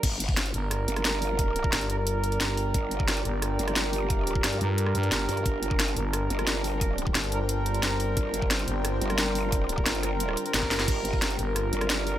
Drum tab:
CC |x---------------|----------------|----------------|----------------|
HH |x-x-xxx-x-xxx-o-|x-x-xxx-x-xxx-o-|x-x-xxx-x-xxx-o-|x-x-xxx-x-xxx-ox|
SD |----o---r--ro---|----o-------o---|----o---r--ro---|----o----r--o---|
BD |o--o------------|o--o------------|o--o------------|o--o------------|

CC |----------------|----------------|----------------|----------------|
HH |x-x-xxx-x-xxx-o-|x-x-xxx-x-xxx-o-|x-x-xxx-x-xxx-o-|x-x-xxx-x-xxx-ox|
SD |----o---r--ro---|----o-------o---|----o---r--ro---|----o-r--r--oooo|
BD |o--o------------|o--o------------|o--o------------|o--o---------o--|

CC |x---------------|
HH |x-x-xxx-x-xxx-o-|
SD |----o---r--ro---|
BD |o--o------------|